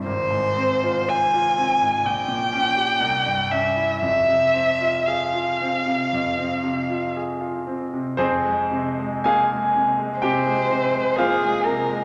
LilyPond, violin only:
\new Staff \with { instrumentName = "Violin" } { \time 4/4 \key f \minor \tempo 4 = 59 c''4 aes''4 g''4. e''8 | e''4 f''2 r4 | r2 c''4 aes'8 bes'8 | }